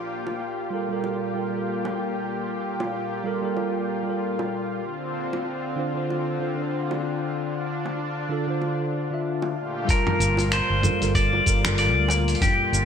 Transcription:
Already playing: analog synth pad A#2 F4 G4
0.27 high bongo
0.70 tine electric piano G3 F4 A4 A#4
0.89 tine electric piano G3 F4 A4 A#4
1.04 high bongo
1.34 tine electric piano G3 F4 A4 A#4
1.50 tine electric piano G3 F4
1.55 tine electric piano A4 A#4
1.85 high bongo
2.80 high bongo
3.23 tine electric piano G3 F4 A4 A#4
3.42 tine electric piano G3 F4 A4 A#4
3.57 high bongo
4.03 tine electric piano G3 F4
4.07 tine electric piano A4 A#4
4.39 high bongo
4.83 analog synth pad D3 C4
5.33 high bongo
5.76 tine electric piano D3 D4 F4 C5
5.94 tine electric piano D3 D4 F4 C5
6.10 high bongo
6.39 tine electric piano D3 D4 F4 C5
6.55 tine electric piano D3 D4
6.60 tine electric piano F4 C5
6.91 high bongo
7.36 analog synth pad D4
7.86 high bongo
8.29 tine electric piano D3 D4 F4 A4
8.47 tine electric piano D3 D4 F4 C5
8.62 high bongo
9.10 tine electric piano D3 D4 F4 E5
9.42 high bongo
9.56 analog synth pad A#2 A3 F4 G4
9.85 analog synth pad A#2 F4, tine electric piano G3 F4, kick, open hi-hat
9.90 pedal steel guitar A#4, tine electric piano A#4 A5, shaker
10.07 mid tom
10.20 fretless electric bass G1, open hi-hat, shaker
10.37 open hi-hat, high bongo, shaker
10.52 pedal steel guitar C5, finger snap, open hi-hat, shaker
10.70 fretless electric bass G1
10.82 tine electric piano G3 F4 A4 A#4, mid tom, open hi-hat, shaker
11.00 fretless electric bass G1, tine electric piano G3 F4 A4 A#4, open hi-hat, shaker
11.15 pedal steel guitar D5, kick, open hi-hat, shaker
11.33 high bongo
11.45 fretless electric bass G1, tine electric piano G3 F4 A4 A#4, kick, open hi-hat, shaker
11.61 tine electric piano G3 F4, finger snap, mid tom, open hi-hat
11.65 tine electric piano A4 A#4, shaker
11.78 pedal steel guitar D5, open hi-hat, shaker
11.96 fretless electric bass D2
12.08 open hi-hat, high bongo, shaker
12.28 open hi-hat, shaker
12.35 open hi-hat
12.41 pedal steel guitar G4, kick, mid tom, open hi-hat, shaker
12.72 fretless electric bass G1, open hi-hat, shaker

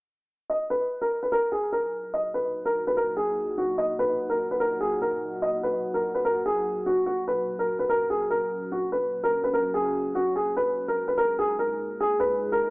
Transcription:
0.50 ambient pad A#2 F#3 D#4 F#4, felt piano D#5
0.70 felt piano B4
1.01 felt piano A#4
1.23 felt piano B4
1.32 felt piano A#4
1.52 felt piano G#4
1.72 felt piano A#4
2.14 felt piano D#5
2.34 felt piano B4
2.65 felt piano A#4
2.87 felt piano B4
2.97 felt piano A#4
3.17 felt piano G#4
3.58 felt piano F#4
3.78 felt piano D#5
3.99 felt piano B4
4.30 felt piano A#4
4.51 felt piano B4
4.60 felt piano A#4
4.80 felt piano G#4
5.02 felt piano A#4
5.42 felt piano D#5
5.63 felt piano B4
5.94 felt piano A#4
6.15 felt piano B4
6.25 felt piano A#4
6.46 felt piano G#4
6.86 felt piano F#4
7.06 ambient pad C#4, felt piano F#4
7.28 felt piano B4
7.59 felt piano A#4
7.79 felt piano B4
7.89 felt piano A#4
8.10 felt piano G#4
8.30 felt piano A#4
8.72 felt piano F#4
8.92 felt piano B4
9.23 felt piano A#4
9.44 felt piano B4
9.54 felt piano A#4
9.74 felt piano G#4
10.15 felt piano F#4
10.36 ambient pad A#2 G#3 D#4 G#4, felt piano G#4
10.57 felt piano B4
10.88 felt piano A#4
11.08 felt piano B4
11.17 felt piano A#4
11.39 felt piano G#4
11.59 felt piano A#4
12.00 felt piano G#4
12.20 felt piano B4
12.52 felt piano A#4

